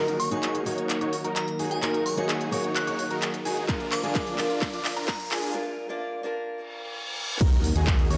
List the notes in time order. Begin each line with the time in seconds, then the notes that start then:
Already playing: D#3 F#3 A#3 D#4 F#4 A#4 A#5, riser
0.08 closed hi-hat
0.20 C#6, open hi-hat
0.31 A#3 D#4 F#4 G#4 C#5 G#5, closed hi-hat
0.43 clap, closed hi-hat
0.55 closed hi-hat
0.65 A#3 D#4 F#4 A#4 C#5 C#6, open hi-hat
0.78 closed hi-hat
0.90 clap, closed hi-hat
1.01 D#4 F#4 C#5 C#6, closed hi-hat
1.13 open hi-hat
1.24 D#4 F#4 A#4 A#5, closed hi-hat
1.36 A#5, clap, closed hi-hat
1.48 closed hi-hat
1.59 D#4 F#4 G#4 G#5, open hi-hat
1.71 G#5, closed hi-hat
1.82 A#3 D#4 F#4 G#4 A#4 A#5, clap, closed hi-hat
1.94 closed hi-hat
2.06 C#6, open hi-hat
2.17 A#3 D#4 F#4 G#4 C#5 G#5, closed hi-hat
2.29 clap, closed hi-hat
2.41 closed hi-hat
2.51 A#3 D#4 F#4 A#4 C#5 C#6, open hi-hat
2.64 closed hi-hat
2.76 F#6, clap, closed hi-hat
2.87 D#4 F#4 C#5 C#6, closed hi-hat
2.99 open hi-hat
3.10 D#4 F#4 A#4 A#5, closed hi-hat
3.22 clap, closed hi-hat
3.34 closed hi-hat
3.45 D#4 F#4 G#4 G#5, open hi-hat
3.57 closed hi-hat
3.68 D3 F3 A#3 D4 F4 A#4 A#5, kick, clap, closed hi-hat
3.80 closed hi-hat
3.92 D6, clap, open hi-hat
4.03 A#3 D4 F4 G#4 D5 G#5, closed hi-hat
4.15 kick, clap, closed hi-hat
4.27 closed hi-hat
4.37 A#3 D4 F4 A#4 D5 D6, clap, open hi-hat
4.50 closed hi-hat
4.62 kick, clap, closed hi-hat
4.73 D4 F4 D5 D6, closed hi-hat
4.85 clap, open hi-hat
4.96 D4 F4 A#4 A#5, closed hi-hat
5.08 A#5, kick, clap, closed hi-hat
5.20 closed hi-hat
5.31 D4 F4 G#4 G#5, clap, open hi-hat
5.43 closed hi-hat
5.54 A#3 D4 F4 A#4
5.89 A#3 D4 F4 D5
6.23 A#3 D4 F4 A#4
6.48 reverse cymbal
7.41 D#2 D#3 F#3 A#3 D#4 F#4 A#4 A#5, kick, closed hi-hat, crash, impact
7.52 closed hi-hat
7.64 open hi-hat
7.76 D#2 D#4 F#4 G#4 G#5, closed hi-hat
7.87 kick, clap, closed hi-hat
7.99 closed hi-hat
8.10 D#2 D#4 F#4 C#5 C#6, open hi-hat